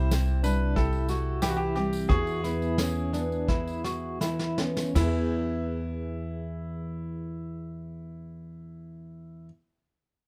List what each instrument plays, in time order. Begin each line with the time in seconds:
Already playing: upright bass C2, steel-string acoustic guitar C3 G3 E4 G4, clean electric guitar E4, upright piano C5
0.11 clean electric guitar C4, steel-string acoustic guitar E4, snare, tambourine
0.28 tambourine
0.43 steel-string acoustic guitar G3, clean electric guitar D4, upright piano B4, snare, tambourine
0.76 clean electric guitar E4, steel-string acoustic guitar G4, upright piano A4, kick, snare, tambourine
0.93 tambourine
1.09 steel-string acoustic guitar E4, clean electric guitar F#4, snare, tambourine
1.42 steel-string acoustic guitar E3, clean electric guitar E4, upright piano G4, snare, tambourine
1.49 upright piano F#4
1.57 upright piano G4
1.76 steel-string acoustic guitar G3, clean electric guitar C4, upright piano G4, snare, tambourine
1.93 tambourine
2.09 steel-string acoustic guitar E2 E4, upright bass E2, clean electric guitar F#4, upright piano G#4, kick, snare
2.27 tambourine
2.44 steel-string acoustic guitar B3, clean electric guitar E4, snare, tambourine
2.62 tambourine
2.78 clean electric guitar C#4, steel-string acoustic guitar E4, snare, tambourine
3.13 steel-string acoustic guitar B3, clean electric guitar D4, snare, tambourine
3.32 tambourine
3.48 clean electric guitar E4, steel-string acoustic guitar E4, kick, snare
3.67 tambourine
3.84 steel-string acoustic guitar E4, clean electric guitar F#4, snare, tambourine
4.20 steel-string acoustic guitar E3, clean electric guitar E4, snare, tambourine
4.39 snare
4.58 steel-string acoustic guitar B3, clean electric guitar C#4, snare, tambourine
4.77 snare, tambourine
4.95 upright bass E2, steel-string acoustic guitar E2 E3, upright piano E4, clean electric guitar E4, snare, tambourine, crash
5.00 steel-string acoustic guitar B3 E4, clean electric guitar G#4
5.04 steel-string acoustic guitar G#4, clean electric guitar B4
5.08 clean electric guitar E5